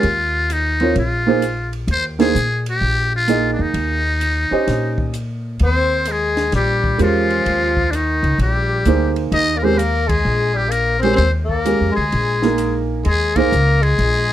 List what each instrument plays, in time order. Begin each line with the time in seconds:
Already playing: muted trumpet F4
0.03 upright bass D#2, ride
0.50 muted trumpet D#4, hi-hat pedal, ride
0.80 grand piano C4 F4 A#4 C#5, ride
0.95 upright bass A#1, muted trumpet F4, ride
1.27 grand piano A#3 D#4 G#4 C5
1.42 hi-hat pedal, ride
1.73 ride
1.87 upright bass D#2, muted trumpet C5, ride
2.19 grand piano A#3 D#4 G#4 C5, muted trumpet G#4, snare, ride
2.35 upright bass A#2, hi-hat pedal
2.66 muted trumpet G4, ride
2.81 upright bass A#1
3.16 muted trumpet F4
3.28 grand piano A#3 D#4 G#4 D#5, hi-hat pedal, ride
3.53 muted trumpet D4
3.59 upright bass E2, muted trumpet D#4
3.74 upright bass D#2, ride
4.21 hi-hat pedal, ride
4.51 grand piano C#4 G4 C5 D#5, muted upright bass stroke
4.67 upright bass A#2, snare, ride
4.98 kick
5.14 hi-hat pedal, ride
5.59 upright bass D#2, tenor saxophone C4, ride
5.65 muted trumpet C5
6.05 tenor saxophone G#3, hi-hat pedal, ride
6.12 muted trumpet G#4
6.37 snare, ride
6.52 upright bass A#1, tenor saxophone G3, muted trumpet G4, snare, ride
6.84 kick
6.98 upright bass E2, tenor saxophone F3, grand piano G#3 C#4 G4 A#4, hi-hat pedal, ride
7.03 muted trumpet F4
7.30 ride
7.46 upright bass D#2, ride
7.77 kick
7.91 tenor saxophone D3, muted trumpet D4, hi-hat pedal, ride
7.95 tenor saxophone D#3, muted trumpet D#4
8.23 upright bass C#2, ride
8.38 upright bass A#1, tenor saxophone G3, muted trumpet G4, ride
8.85 upright bass D2, grand piano A#3 D#4 G#4 C5, hi-hat pedal, ride
9.16 ride
9.32 upright bass D#2, tenor saxophone D#4, muted trumpet D#5, ride
9.56 tenor saxophone A#3, muted trumpet A#4
9.63 grand piano G#3 C#4 G4 A#4, tenor saxophone C4, muted trumpet C5
9.77 tenor saxophone A#3, muted trumpet A#4, hi-hat pedal, ride
10.07 tenor saxophone G#3, muted trumpet G#4, kick, ride
10.25 upright bass A#1
10.54 tenor saxophone G3, muted trumpet G4
10.68 tenor saxophone A#3, muted trumpet A#4, hi-hat pedal, ride
10.99 tenor saxophone C4, muted trumpet C5
11.03 grand piano G#3 C#4 G4 A#4, ride
11.13 tenor saxophone C4, muted trumpet C5
11.18 upright bass D#2, ride
11.45 tenor saxophone A#3
11.49 muted trumpet A#4, kick
11.65 grand piano G#3 C#4 G4 A#4, hi-hat pedal, ride
11.81 upright bass F2
11.92 tenor saxophone G#3, muted trumpet G#4
11.97 upright bass D2
12.12 upright bass A#1, ride
12.42 grand piano A#3 D#4 G#4 A#4, snare
12.58 hi-hat pedal, ride
13.04 upright bass D#2, tenor saxophone G#3, muted trumpet G#4, ride
13.36 grand piano A#3 D#4 G#4 C5, tenor saxophone A#3, muted trumpet A#4, kick, ride
13.52 upright bass C#2, hi-hat pedal
13.82 tenor saxophone G#3, muted trumpet G#4, ride
13.98 upright bass A#1, ride